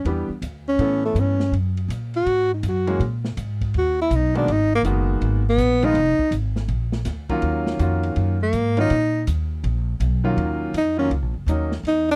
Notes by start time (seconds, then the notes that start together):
0.05 E2 E3 G3 B3 D4 G4, ride
0.29 muted upright bass stroke
0.42 D2, hi-hat pedal, ride
0.68 C#4
0.79 A2 E3 A3 B3 C#4 A4, ride
1.05 A3
1.15 G2, hi-hat pedal, ride
1.20 C#4
1.40 snare
1.52 F#2, ride
1.77 ride
1.88 A#2, hi-hat pedal, ride
2.14 F#4, ride
2.26 G#2, ride
2.54 D#4
2.63 F#2, hi-hat pedal, ride
2.68 F#4
2.87 E3 G#3 A#3 C#4 G#4, ride
3.00 A#2, ride
3.24 snare
3.37 G#2, hi-hat pedal, ride
3.61 kick, ride
3.74 D#2, ride
3.78 F#4
4.02 E4
4.10 B1, hi-hat pedal, ride
4.16 D#4
4.34 D#3 G#3 A#3 B3 D4 F#4, ride
4.48 G#1, ride
4.52 D#4
4.75 A#3
4.83 F#1 D#3 G#3 A#3 B3 F#4, hi-hat pedal, ride
5.21 G#1, ride
5.49 B3
5.57 A#1, hi-hat pedal, ride
5.82 D#3 F3 G#3 B3 D#4 F4, ride
5.94 F1, ride
6.19 muted upright bass stroke, kick
6.31 G#1, hi-hat pedal, ride
6.56 snare
6.68 A#1, ride
6.92 snare
7.05 D2, snare, hi-hat pedal, ride
7.29 D#3 F#3 A#3 C#4 F4, kick, ride
7.42 D#2, ride
7.66 snare
7.79 F2 D#3 A#3 C#4 F4 F#4, hi-hat pedal, ride
8.03 ride
8.16 F#2, ride
8.43 A#3
8.53 G#2, hi-hat pedal, ride
8.77 D#3 F#3 A#3 C#4 D#4 F4, ride
8.90 A#2, ride
9.27 D#2, hi-hat pedal, ride
9.64 A#1, ride
10.00 B1, hi-hat pedal, ride
10.24 D#3 F#3 A#3 C#4 F4
10.37 D#2, ride
10.73 F2 D#4, hi-hat pedal, ride
10.97 D#3 F#3 A#3 C#4 F4
11.10 C#2, ride
11.22 A#1
11.34 F#1
11.46 D#2 D#3 F#3 A#3 C#4 D#4, hi-hat pedal, ride
11.72 snare
11.83 E2, ride
11.88 D#4
12.11 D4